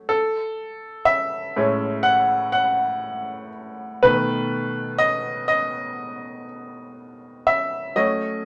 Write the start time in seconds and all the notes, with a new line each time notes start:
0.09 A4
1.05 E5
1.56 A2 G#3 C#4
2.03 F#5
2.52 F#5
4.03 B2 D#3 A3 B4
4.98 D#5
5.48 D#5
7.47 E5
7.96 F#3 A3 C#4 D#5